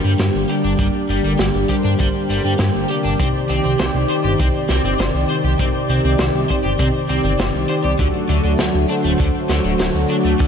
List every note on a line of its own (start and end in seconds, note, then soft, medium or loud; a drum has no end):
0.00 3.16 D3 medium
0.00 0.46 G3 medium
0.00 3.15 G3 medium
0.00 3.16 A#3 medium
0.00 0.46 D4 medium
0.00 0.46 G4 medium
0.00 7.96 G4 medium
0.00 0.46 A#4 medium
0.00 0.46 C5 loud
0.04 0.15 G2 medium
0.04 0.12 G3 medium
0.19 0.30 G2 loud
0.19 0.24 G4 medium
0.19 snare loud
0.19 closed hi-hat loud
0.35 0.45 G1 medium
0.49 0.76 G3 medium
0.49 0.76 D4 medium
0.49 0.54 G4 loud
0.49 0.76 G4 medium
0.49 0.76 A#4 medium
0.49 0.76 D5 medium
0.49 closed hi-hat medium
0.64 0.75 G1 medium
0.64 0.72 D4 medium
0.79 0.90 G1 loud
0.79 0.87 G3 medium
0.79 1.66 G3 medium
0.79 1.66 D4 medium
0.79 1.66 G4 medium
0.79 1.66 A#4 medium
0.79 1.66 D5 loud
0.79 kick loud
0.79 closed hi-hat loud
1.09 1.20 G1 medium
1.09 1.21 G3 medium
1.09 closed hi-hat medium
1.24 1.35 G1 medium
1.24 1.32 G3 medium
1.39 1.50 G1 loud
1.39 1.44 G4 medium
1.39 snare loud
1.39 closed hi-hat loud
1.54 1.65 G1 medium
1.69 2.86 G3 medium
1.69 2.86 D4 medium
1.69 1.74 G4 loud
1.69 2.86 G4 medium
1.69 2.86 A#4 medium
1.69 2.86 C5 loud
1.69 kick medium
1.69 closed hi-hat medium
1.84 1.95 G2 medium
1.84 1.92 D4 medium
1.99 2.11 G1 loud
1.99 2.07 G3 medium
1.99 kick loud
1.99 closed hi-hat medium
2.29 2.40 G1 medium
2.29 2.41 G3 medium
2.29 closed hi-hat medium
2.44 2.55 G2 medium
2.44 2.52 G3 medium
2.59 2.70 G2 medium
2.59 2.64 G4 medium
2.59 snare loud
2.59 closed hi-hat medium
2.75 2.85 G1 medium
2.89 3.16 C3 medium
2.89 3.16 D4 medium
2.89 2.94 G4 loud
2.89 3.16 G4 medium
2.89 3.16 A#4 medium
2.89 3.16 D5 medium
2.89 closed hi-hat medium
3.04 3.15 G1 medium
3.04 3.12 D4 medium
3.19 3.30 C2 loud
3.19 4.06 C3 medium
3.19 7.96 C3 medium
3.19 7.96 D#3 medium
3.19 3.27 C4 medium
3.19 4.06 D#4 medium
3.19 4.06 G4 medium
3.19 4.06 C5 medium
3.19 4.06 D5 loud
3.19 7.96 D5 medium
3.19 kick loud
3.19 closed hi-hat loud
3.49 3.60 C2 medium
3.49 3.61 C4 medium
3.49 closed hi-hat medium
3.64 3.75 C2 medium
3.64 3.72 C4 medium
3.79 3.90 C2 loud
3.79 3.84 C5 medium
3.79 snare loud
3.79 closed hi-hat medium
3.95 4.05 C2 medium
4.09 5.26 C3 loud
4.09 5.26 D#4 medium
4.09 5.26 G4 medium
4.09 4.14 C5 loud
4.09 5.26 C5 medium
4.09 5.26 D5 loud
4.09 closed hi-hat medium
4.24 4.35 G1 medium
4.24 4.32 G4 medium
4.39 4.51 C2 loud
4.39 4.47 C4 medium
4.39 kick loud
4.39 closed hi-hat medium
4.69 4.80 C2 medium
4.69 4.81 C4 medium
4.69 snare medium
4.69 closed hi-hat medium
4.84 4.95 G1 medium
4.84 4.92 C4 medium
4.99 5.10 G1 medium
4.99 5.04 C5 medium
4.99 snare loud
4.99 closed hi-hat medium
5.14 5.25 C2 medium
5.29 5.56 C3 medium
5.29 5.56 D#4 medium
5.29 5.56 G4 medium
5.29 5.34 C5 loud
5.29 5.56 C5 medium
5.29 5.56 D5 loud
5.29 closed hi-hat medium
5.44 5.55 C2 medium
5.44 5.52 G4 medium
5.59 5.70 C2 loud
5.59 6.46 C3 medium
5.59 5.67 C4 medium
5.59 6.46 D#4 medium
5.59 6.46 G4 medium
5.59 6.46 C5 medium
5.59 6.46 D5 loud
5.59 kick loud
5.59 closed hi-hat medium
5.89 6.00 C2 medium
5.89 6.01 C4 medium
5.89 closed hi-hat medium
6.04 6.15 C2 medium
6.04 6.12 C4 medium
6.19 6.30 C2 loud
6.19 6.24 C5 medium
6.19 snare loud
6.19 closed hi-hat loud
6.35 6.45 C2 medium
6.49 7.66 C3 medium
6.49 7.66 D#4 medium
6.49 7.66 G4 medium
6.49 6.54 C5 loud
6.49 7.66 C5 medium
6.49 7.66 D5 loud
6.49 kick medium
6.49 closed hi-hat medium
6.64 6.75 G1 medium
6.64 6.72 G4 medium
6.79 6.90 C2 loud
6.79 6.87 C4 medium
6.79 kick loud
6.79 closed hi-hat loud
7.09 7.20 C2 medium
7.09 7.21 C4 medium
7.09 closed hi-hat medium
7.24 7.35 G1 medium
7.24 7.32 C4 medium
7.39 7.50 G1 medium
7.39 7.44 C5 medium
7.39 snare loud
7.39 closed hi-hat medium
7.54 7.65 C2 medium
7.69 7.96 D#4 medium
7.69 7.96 G4 medium
7.69 7.74 C5 loud
7.69 7.96 C5 medium
7.69 7.96 D5 medium
7.69 closed hi-hat medium
7.84 7.95 C2 medium
7.84 7.92 G4 medium
7.99 8.10 D2 loud
7.99 8.86 D3 medium
7.99 8.07 D3 medium
7.99 10.48 D3 medium
7.99 10.48 F#3 medium
7.99 10.48 A3 medium
7.99 8.86 D4 medium
7.99 8.86 F#4 medium
7.99 10.48 F#4 medium
7.99 8.86 A4 medium
7.99 8.86 D5 loud
7.99 kick loud
7.99 closed hi-hat medium
8.29 8.40 D2 medium
8.29 8.41 D3 medium
8.29 closed hi-hat medium
8.44 8.55 D2 medium
8.44 8.52 D3 medium
8.59 8.70 D2 loud
8.59 8.64 D4 medium
8.59 snare loud
8.59 closed hi-hat medium
8.74 8.85 D2 medium
8.89 10.06 D3 medium
8.89 10.06 D4 medium
8.89 8.94 D4 loud
8.89 10.06 F#4 medium
8.89 10.06 A4 medium
8.89 10.06 C5 loud
8.89 closed hi-hat medium
9.04 9.15 D1 medium
9.04 9.12 A3 medium
9.19 9.31 D2 loud
9.19 9.27 D3 medium
9.19 kick loud
9.19 closed hi-hat medium
9.49 9.60 D2 medium
9.49 9.61 D3 medium
9.49 snare medium
9.49 closed hi-hat medium
9.64 9.75 D1 medium
9.64 9.72 D3 medium
9.79 9.90 D1 loud
9.79 9.84 D4 medium
9.79 snare loud
9.79 closed hi-hat medium
9.94 10.05 D2 medium
10.09 10.36 D3 medium
10.09 10.36 D4 medium
10.09 10.14 D4 loud
10.09 10.36 F#4 medium
10.09 10.36 A4 medium
10.09 10.36 D5 medium
10.09 closed hi-hat medium
10.24 10.35 D2 medium
10.24 10.32 A3 medium
10.39 10.48 D2 loud
10.39 10.47 D3 medium
10.39 10.48 D3 medium
10.39 10.48 D4 medium
10.39 10.48 F#4 medium
10.39 10.48 A4 medium
10.39 10.48 D5 loud
10.39 kick loud
10.39 closed hi-hat medium